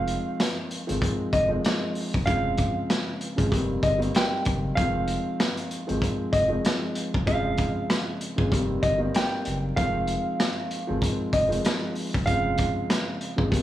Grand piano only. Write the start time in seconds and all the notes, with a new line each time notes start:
Already playing: D#3 F3 G#3 C4
0.87 D#3 F3 G#3 C4
1.48 D#3 F3 G#3 C4
2.26 C#3 F3 G#3 C4
3.36 C#3 F3 G#3 C4
3.50 D#3 G3 A#3 C4
3.98 D#3 G3 A#3 C4
4.76 D#3 F3 G#3 C4
5.87 D#3 F3 G#3 C4
6.48 D#3 F3 G#3 C4
7.26 C#3 F3 G#3 C4
8.36 C#3 F3 G#3 C4
8.50 D#3 G3 A#3 C4
8.98 D#3 G3 A#3 C4
9.76 D#3 F3 G#3 C4
10.87 D#3 F3 G#3 C4
11.48 D#3 F3 G#3 C4
12.26 C#3 F3 G#3 C4
13.36 C#3 F3 G#3 C4
13.51 D#3 G3 A#3 C4